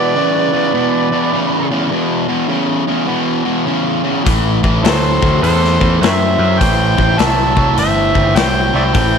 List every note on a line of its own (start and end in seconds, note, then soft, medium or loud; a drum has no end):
0.00 0.13 E2 medium
0.00 0.13 B2 medium
0.00 1.67 B4 medium
0.00 1.66 D5 loud
0.16 0.50 E2 medium
0.16 0.50 C#3 loud
0.53 0.72 E2 medium
0.53 0.72 C#3 medium
0.74 1.08 E2 medium
0.74 1.08 B2 medium
1.12 1.31 E2 medium
1.12 1.31 B2 medium
1.33 1.67 E2 medium
1.33 1.67 C#3 medium
1.71 1.90 E2 medium
1.71 1.90 C#3 medium
1.91 2.25 E2 medium
1.91 2.26 B2 medium
2.28 2.47 E2 medium
2.28 2.48 B2 medium
2.48 2.83 E2 medium
2.48 2.83 C#3 medium
2.88 3.06 E2 medium
2.88 3.07 C#3 medium
3.07 3.42 E2 medium
3.07 3.42 B2 medium
3.44 3.64 E2 medium
3.44 3.65 B2 medium
3.66 4.01 E2 medium
3.66 4.01 C#3 medium
4.04 4.23 E2 medium
4.04 4.24 C#3 medium
4.25 4.60 A1 medium
4.25 4.59 A2 medium
4.25 4.60 E3 medium
4.25 kick loud
4.25 open hi-hat medium
4.63 4.83 A1 medium
4.63 4.82 A2 medium
4.63 4.82 E3 medium
4.63 kick medium
4.83 5.18 D2 medium
4.83 5.18 A2 medium
4.83 5.18 F#3 medium
4.83 4.89 E4 medium
4.83 4.91 A4 medium
4.83 5.40 A4 medium
4.83 5.39 C5 medium
4.83 snare loud
4.83 open hi-hat soft
5.21 5.41 D2 medium
5.21 5.41 A2 medium
5.21 5.41 F#3 medium
5.21 kick medium
5.42 5.77 E2 medium
5.42 5.77 A2 medium
5.42 5.77 E3 medium
5.42 5.98 A4 medium
5.42 5.97 C5 medium
5.42 open hi-hat medium
5.64 snare soft
5.80 6.00 E2 medium
5.80 6.00 A2 medium
5.80 6.00 E3 medium
5.80 kick medium
6.01 6.36 F#2 medium
6.01 6.35 A2 medium
6.01 6.36 F#3 medium
6.01 6.11 B4 medium
6.01 6.56 C5 medium
6.01 6.10 C#5 medium
6.01 6.61 E5 medium
6.01 snare loud
6.01 open hi-hat medium
6.38 6.58 F#2 medium
6.38 6.58 A2 medium
6.38 6.58 F#3 medium
6.59 6.95 A1 medium
6.59 6.94 A2 medium
6.59 6.94 E3 medium
6.59 7.18 C5 medium
6.59 7.21 G5 loud
6.59 kick loud
6.59 open hi-hat medium
6.97 7.17 A1 medium
6.97 7.16 A2 medium
6.97 7.17 E3 medium
6.97 kick medium
7.17 7.53 C2 medium
7.17 7.52 A2 medium
7.17 7.53 F#3 medium
7.17 7.78 E5 medium
7.17 7.78 A5 loud
7.17 snare loud
7.17 open hi-hat medium
7.56 7.76 C2 medium
7.56 7.75 A2 medium
7.56 7.75 F#3 medium
7.56 kick medium
7.76 8.12 G1 medium
7.76 8.11 A2 medium
7.76 8.11 E3 medium
7.76 8.33 C5 medium
7.76 8.39 E5 loud
7.76 open hi-hat medium
8.14 8.34 G1 medium
8.14 8.34 A2 medium
8.14 8.34 E3 medium
8.14 kick medium
8.35 8.70 C2 medium
8.35 8.70 A2 medium
8.35 8.70 F#3 medium
8.35 8.75 C5 medium
8.35 8.74 G5 medium
8.35 snare loud
8.35 open hi-hat medium
8.73 8.93 C2 medium
8.73 8.92 A2 medium
8.73 8.93 F#3 medium
8.73 9.18 C5 medium
8.73 8.82 D5 medium
8.73 8.84 E5 medium
8.73 9.18 G5 loud
8.93 9.18 A1 medium
8.93 9.18 A2 medium
8.93 9.18 E3 loud
8.93 kick loud
8.93 open hi-hat medium